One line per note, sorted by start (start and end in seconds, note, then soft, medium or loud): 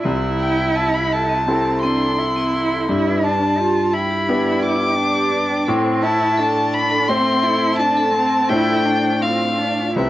0.04 2.85 C2 medium
0.04 0.14 C4 medium
0.04 1.43 E4 medium
0.22 0.33 E4 soft
0.40 0.52 E4 soft
0.40 0.76 G5 medium
0.58 0.69 G4 soft
0.75 0.86 C4 medium
0.75 0.95 A5 medium
0.94 1.14 B5 medium
1.12 1.23 A4 soft
1.12 1.81 A5 medium
1.29 1.40 C4 medium
1.47 2.85 C4 soft
1.47 1.85 C4 medium
1.47 2.85 E4 soft
1.47 1.58 G4 soft
1.47 2.85 A4 soft
1.65 1.76 G4 soft
1.82 1.94 C4 medium
1.82 2.20 D4 medium
1.82 2.86 C6 medium
2.01 2.11 A4 soft
2.18 2.89 E4 medium
2.18 2.29 A4 soft
2.36 2.47 C4 medium
2.54 2.65 E4 soft
2.71 2.81 A4 soft
2.88 5.64 G2 medium
2.88 3.25 E4 medium
2.88 2.99 G4 medium
3.06 3.17 B4 soft
3.23 3.60 D4 medium
3.23 3.95 A5 medium
3.40 3.51 D5 medium
3.58 3.95 F4 medium
3.58 3.69 G4 medium
3.93 4.97 E4 medium
3.93 4.04 G5 medium
3.93 4.63 B5 medium
4.11 4.21 G4 medium
4.28 5.64 B3 medium
4.28 5.64 D4 soft
4.28 5.65 G4 medium
4.28 4.39 D5 medium
4.46 4.57 D5 medium
4.63 4.74 G4 medium
4.63 5.67 D6 medium
4.80 4.91 G5 medium
4.97 5.70 D4 medium
4.97 5.08 G5 medium
5.15 5.26 G4 medium
5.32 5.43 B4 medium
5.49 5.60 G5 medium
5.67 8.45 A2 medium
5.67 6.04 C4 medium
5.67 5.77 A4 medium
5.84 5.95 C5 medium
6.02 6.40 E4 medium
6.02 6.12 C5 medium
6.02 6.75 A5 medium
6.20 6.30 E5 medium
6.37 7.11 D4 medium
6.37 6.48 A4 medium
6.73 6.84 A5 medium
6.73 7.09 B5 loud
6.91 7.01 A4 medium
7.08 8.46 A3 medium
7.08 7.45 C4 medium
7.08 8.46 C4 medium
7.08 8.46 C5 medium
7.08 7.19 E5 medium
7.08 7.77 C6 loud
7.26 7.36 E5 medium
7.43 7.81 E4 medium
7.43 7.54 A4 medium
7.62 7.72 A5 medium
7.78 8.13 D4 medium
7.78 8.50 A5 loud
7.78 7.90 A5 medium
7.97 8.07 A4 medium
8.14 8.51 C4 medium
8.14 8.25 C5 medium
8.33 8.43 A5 medium
8.49 9.92 A2 medium
8.49 9.92 A3 soft
8.49 9.92 D4 soft
8.49 8.87 E4 medium
8.49 8.61 F4 medium
8.49 9.93 C5 soft
8.49 9.24 G5 loud
8.69 8.80 A4 medium
8.85 9.22 D4 medium
9.06 9.16 C5 medium
9.21 9.59 C4 medium
9.21 9.34 F4 medium
9.21 9.96 F5 medium
9.58 9.95 D4 medium
9.58 9.71 D5 soft
9.79 9.90 F4 medium
9.95 10.10 C2 soft
9.95 10.10 G3 soft
9.95 10.10 C4 soft
9.95 10.10 E4 medium
9.95 10.10 B4 soft
9.95 10.10 E5 medium